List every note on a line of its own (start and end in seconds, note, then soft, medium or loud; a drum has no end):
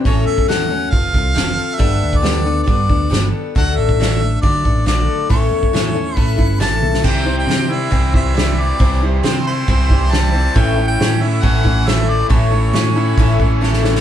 0.05 0.24 A1 medium
0.05 0.47 A2 medium
0.05 0.47 E3 medium
0.05 0.47 F#3 medium
0.05 0.48 A3 medium
0.05 0.48 C#4 medium
0.05 0.49 A4 medium
0.05 0.26 C#5 medium
0.05 kick medium
0.05 open hi-hat soft
0.26 0.85 E2 medium
0.26 0.47 E5 medium
0.38 kick medium
0.48 0.70 A2 medium
0.48 0.70 E3 medium
0.48 0.70 F#3 medium
0.48 0.70 A3 medium
0.48 0.69 C#4 medium
0.48 0.68 A4 medium
0.48 0.92 F#5 medium
0.48 snare loud
0.48 open hi-hat soft
0.69 0.91 F#3 soft
0.69 0.92 A3 soft
0.69 0.92 C#4 soft
0.69 0.92 A4 soft
0.90 1.12 F1 medium
0.90 1.14 F3 medium
0.90 1.14 C4 soft
0.90 1.13 F4 medium
0.90 1.12 A4 medium
0.90 1.76 F5 medium
0.90 kick medium
0.90 open hi-hat soft
1.13 1.34 C2 medium
1.13 1.34 C4 soft
1.13 1.34 F4 soft
1.13 1.34 A4 soft
1.13 kick medium
1.34 1.56 F1 medium
1.34 1.77 F3 medium
1.34 1.78 C4 medium
1.34 1.78 F4 medium
1.34 1.79 A4 medium
1.34 snare medium
1.34 open hi-hat soft
1.75 2.21 G3 medium
1.75 2.21 B3 medium
1.75 2.19 E5 medium
1.79 1.99 G1 medium
1.79 2.23 D4 medium
1.79 2.23 A4 medium
1.79 kick loud
1.79 open hi-hat soft
2.03 2.61 D2 medium
2.13 kick medium
2.18 2.63 D5 medium
2.22 2.45 G3 medium
2.22 2.45 B3 medium
2.22 2.45 D4 medium
2.22 2.44 A4 medium
2.22 snare medium
2.22 open hi-hat soft
2.45 2.65 B3 soft
2.45 2.66 D4 soft
2.45 2.66 A4 medium
2.63 2.89 G3 medium
2.63 2.89 B3 medium
2.63 2.88 D4 medium
2.63 3.27 D5 medium
2.67 2.87 G2 medium
2.67 2.87 A4 medium
2.67 kick medium
2.67 open hi-hat soft
2.89 3.09 D2 medium
2.89 3.09 B3 soft
2.89 3.10 D4 soft
2.89 3.10 A4 soft
2.89 kick medium
3.10 3.30 G1 medium
3.10 3.54 G3 medium
3.10 3.54 B3 medium
3.10 3.55 D4 medium
3.10 3.56 A4 medium
3.10 snare loud
3.10 open hi-hat soft
3.55 3.75 D2 medium
3.55 3.98 D3 medium
3.55 3.99 F#3 medium
3.55 4.00 A3 medium
3.55 3.99 D4 medium
3.55 4.00 A4 medium
3.55 3.78 F#5 medium
3.55 kick loud
3.55 open hi-hat soft
3.76 4.36 A1 medium
3.76 4.41 E5 medium
3.89 kick medium
4.00 4.21 D3 medium
4.00 4.21 F#3 medium
4.00 4.21 A3 medium
4.00 4.20 D4 medium
4.00 4.19 A4 medium
4.00 snare loud
4.00 open hi-hat soft
4.20 4.42 A3 soft
4.20 4.43 D4 soft
4.20 4.43 A4 soft
4.42 4.62 D3 medium
4.42 4.65 F#3 medium
4.42 4.65 A3 medium
4.42 4.64 D4 medium
4.42 4.63 A4 medium
4.42 4.83 D5 medium
4.42 kick medium
4.42 open hi-hat soft
4.64 4.84 A1 medium
4.64 4.85 A3 soft
4.64 4.86 D4 soft
4.64 4.86 A4 soft
4.64 kick medium
4.85 5.06 A#1 medium
4.85 5.29 D3 medium
4.85 5.29 F#3 medium
4.85 5.29 A3 medium
4.85 5.29 D4 medium
4.85 5.29 A4 medium
4.85 5.27 D5 medium
4.85 snare medium
4.85 open hi-hat soft
5.29 5.50 A1 medium
5.29 5.72 A2 medium
5.29 5.72 E3 medium
5.29 5.73 A3 medium
5.29 5.73 C#4 medium
5.29 5.73 E4 medium
5.29 5.74 A4 medium
5.29 6.17 C#5 medium
5.29 kick loud
5.29 open hi-hat soft
5.52 6.11 E2 medium
5.63 kick medium
5.73 5.96 A2 medium
5.73 5.96 E3 medium
5.73 5.95 A3 medium
5.73 5.94 C#4 medium
5.73 5.94 E4 medium
5.73 5.93 A4 medium
5.73 snare loud
5.73 open hi-hat soft
5.94 6.15 A3 soft
5.94 6.15 C#4 soft
5.94 6.15 E4 soft
5.94 6.16 A4 medium
6.16 6.37 A2 medium
6.16 6.38 A3 medium
6.16 6.37 C#4 medium
6.16 6.36 E4 medium
6.16 6.35 A4 medium
6.16 6.58 B4 medium
6.16 kick medium
6.16 open hi-hat soft
6.36 6.59 G1 medium
6.36 6.59 A3 soft
6.36 6.59 C#4 soft
6.36 6.59 E4 medium
6.36 6.60 A4 medium
6.36 kick medium
6.59 6.81 A1 medium
6.59 7.03 A2 medium
6.59 7.02 E3 medium
6.59 7.03 A3 medium
6.59 7.04 C#4 medium
6.59 7.04 E4 medium
6.59 7.04 A4 medium
6.59 7.02 A5 medium
6.59 snare loud
6.59 open hi-hat soft
6.82 7.03 B1 medium
6.82 high tom medium
6.94 snare medium
7.04 7.44 C2 medium
7.04 7.26 C3 medium
7.04 7.27 E3 medium
7.04 7.25 G3 medium
7.04 7.25 C4 medium
7.04 7.24 E4 medium
7.04 7.23 C5 medium
7.04 7.36 G5 medium
7.04 kick loud
7.04 crash medium
7.25 7.70 G3 soft
7.25 7.69 C4 soft
7.25 7.69 E4 soft
7.25 7.67 C5 medium
7.39 7.73 G5 medium
7.47 7.87 C3 medium
7.47 7.90 C4 medium
7.47 snare medium
7.47 open hi-hat soft
7.69 7.89 G3 soft
7.69 7.90 C4 soft
7.69 7.90 E4 soft
7.69 7.91 C5 soft
7.69 8.15 E5 medium
7.90 8.71 C2 medium
7.90 8.13 C3 medium
7.90 8.14 E3 medium
7.90 8.13 G3 medium
7.90 8.13 C4 medium
7.90 8.12 E4 medium
7.90 8.11 C5 medium
7.90 kick medium
7.90 open hi-hat soft
8.12 8.59 E3 medium
8.12 8.32 G3 soft
8.12 8.33 C4 soft
8.12 8.34 E4 soft
8.12 8.34 C5 soft
8.12 8.62 E5 medium
8.12 kick medium
8.33 8.78 G3 medium
8.33 8.78 C4 medium
8.33 8.79 E4 medium
8.33 8.79 C5 medium
8.33 open hi-hat soft
8.38 snare loud
8.59 9.91 E3 medium
8.59 9.04 D5 medium
8.79 9.20 C2 medium
8.79 9.02 C3 medium
8.79 9.02 E3 medium
8.79 9.02 G3 medium
8.79 9.02 C4 medium
8.79 9.01 E4 medium
8.79 9.01 C5 medium
8.79 kick loud
8.79 open hi-hat medium
9.02 9.68 G3 soft
9.02 9.68 C4 soft
9.02 9.69 E4 soft
9.02 9.68 C5 soft
9.23 9.63 C3 medium
9.23 9.68 C4 medium
9.23 9.45 C5 medium
9.23 snare loud
9.23 open hi-hat soft
9.47 11.21 E4 medium
9.47 10.13 C5 medium
9.67 10.46 C2 medium
9.67 9.90 C3 medium
9.67 9.90 E3 medium
9.67 9.90 G3 medium
9.67 9.90 C4 medium
9.67 9.89 E4 medium
9.67 9.88 C5 medium
9.67 kick loud
9.67 open hi-hat soft
9.89 10.35 E3 medium
9.89 10.09 G3 soft
9.89 10.09 C4 soft
9.89 10.10 E4 soft
9.89 10.10 C5 soft
9.89 kick medium
10.10 10.33 G3 medium
10.10 10.33 C4 medium
10.10 10.32 E4 medium
10.10 10.31 C5 medium
10.10 10.57 A5 loud
10.10 snare loud
10.10 open hi-hat medium
10.32 11.65 E3 medium
10.32 10.55 G3 soft
10.32 10.55 C4 soft
10.32 10.55 E4 soft
10.32 10.55 C5 soft
10.54 10.95 A1 medium
10.54 10.77 A2 medium
10.54 10.77 E3 medium
10.54 10.77 A3 medium
10.54 10.77 C#4 medium
10.54 10.76 E4 medium
10.54 10.75 A4 medium
10.54 10.87 G5 medium
10.54 kick loud
10.54 open hi-hat medium
10.76 11.22 A3 soft
10.76 11.22 C#4 soft
10.76 11.21 E4 medium
10.76 11.21 A4 medium
10.88 11.24 G5 loud
11.00 11.39 A2 medium
11.00 11.43 C#4 medium
11.00 snare loud
11.00 open hi-hat soft
11.21 11.41 A3 soft
11.21 11.42 C#4 soft
11.21 11.42 E4 soft
11.21 11.42 A4 soft
11.21 11.44 E5 medium
11.42 12.21 A1 medium
11.42 11.65 A2 medium
11.42 11.65 E3 medium
11.42 11.64 A3 medium
11.42 11.64 C#4 medium
11.42 11.63 E4 medium
11.42 11.62 A4 medium
11.42 11.89 F#5 medium
11.42 kick medium
11.42 open hi-hat soft
11.63 12.08 E3 medium
11.63 11.85 A3 soft
11.63 11.86 C#4 soft
11.63 11.87 E4 medium
11.63 11.86 A4 medium
11.63 kick medium
11.86 12.29 A3 medium
11.86 12.30 C#4 medium
11.86 12.30 E4 medium
11.86 12.29 A4 medium
11.86 12.11 E5 medium
11.86 snare loud
11.86 open hi-hat medium
12.09 13.18 E3 medium
12.09 12.29 D5 medium
12.29 12.70 A1 medium
12.29 12.52 A2 medium
12.29 12.52 E3 medium
12.29 12.52 A3 medium
12.29 12.51 C#4 medium
12.29 12.50 E4 medium
12.29 12.49 A4 medium
12.29 13.57 C#5 medium
12.29 kick loud
12.29 open hi-hat medium
12.50 12.96 A3 soft
12.50 12.96 C#4 soft
12.50 12.95 E4 soft
12.50 12.94 A4 medium
12.73 13.13 A2 loud
12.73 13.16 C#4 medium
12.73 snare loud
12.73 open hi-hat medium
12.95 13.18 A3 soft
12.95 13.18 C#4 soft
12.95 13.18 E4 medium
12.95 13.17 A4 medium
13.17 13.96 A1 medium
13.17 13.40 A2 medium
13.17 13.40 E3 medium
13.17 13.40 A3 medium
13.17 13.40 C#4 medium
13.17 13.39 E4 medium
13.17 13.38 A4 medium
13.17 kick loud
13.17 open hi-hat medium
13.40 13.81 E3 medium
13.40 13.60 A3 soft
13.40 13.61 C#4 soft
13.40 13.61 E4 medium
13.40 13.61 A4 medium
13.40 kick medium
13.61 13.83 A3 medium
13.61 13.83 C#4 medium
13.61 13.82 E4 medium
13.61 13.82 A4 medium
13.61 snare medium
13.73 snare medium
13.82 14.01 E3 medium
13.82 14.01 A3 soft
13.82 14.01 C#4 soft
13.82 14.01 E4 soft
13.82 14.01 A4 medium
13.82 snare medium
13.95 snare medium